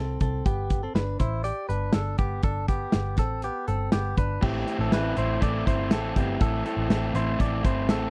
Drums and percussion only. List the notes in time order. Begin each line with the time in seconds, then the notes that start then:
0.20 kick, closed hi-hat
0.46 kick, closed hi-hat
0.70 kick, closed hi-hat
0.96 snare, closed hi-hat
1.20 kick, closed hi-hat
1.44 closed hi-hat
1.70 closed hi-hat
1.93 snare, closed hi-hat
2.18 kick, closed hi-hat
2.43 kick, closed hi-hat
2.68 kick, closed hi-hat
2.92 snare, closed hi-hat
3.17 kick, snare, closed hi-hat
3.42 closed hi-hat
3.68 closed hi-hat
3.92 snare, closed hi-hat
4.17 kick, closed hi-hat
4.42 kick, crash
4.68 closed hi-hat
4.92 snare, closed hi-hat
5.17 closed hi-hat
5.42 kick, closed hi-hat
5.67 kick, closed hi-hat
5.91 snare, closed hi-hat
6.16 kick, closed hi-hat
6.40 kick, closed hi-hat
6.66 closed hi-hat
6.90 snare, closed hi-hat
7.15 closed hi-hat
7.40 kick, closed hi-hat
7.65 kick, closed hi-hat
7.89 snare, closed hi-hat